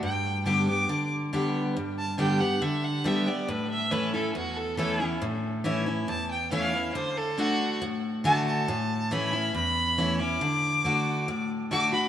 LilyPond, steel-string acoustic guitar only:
\new Staff \with { instrumentName = "Steel-string acoustic guitar" } { \time 4/4 \key d \major \tempo 4 = 139 << { r4 <d g b g'>8 <b g'>8 r4 <d g b g'>4 | r4 <d g b g'>8 <b g'>8 r4 <d g b g'>8 <b g'>8 | r4 <e a cis' e'>8 <cis' e'>8 r4 <e a cis' e'>8 <cis' e'>8 | r4 <e a cis' e'>8 <cis' e'>8 r4 <e a cis' e'>8 <cis' e'>8 |
r4 <d a d' fis'>4 r4 <d a d' fis'>4 | r4 <e a cis' e'>8 <cis' e'>8 r4 <e a cis' e'>8 <cis' e'>8 | r4 <d a d' fis'>4 r4 <d a d' fis'>8 <d' fis'>8 | } \\ { g,2 d2 | g,2 d2 | a,2 e,2 | a,2 e,2 |
d2 a,2 | a,2 e,2 | d2 a,2 | } >> }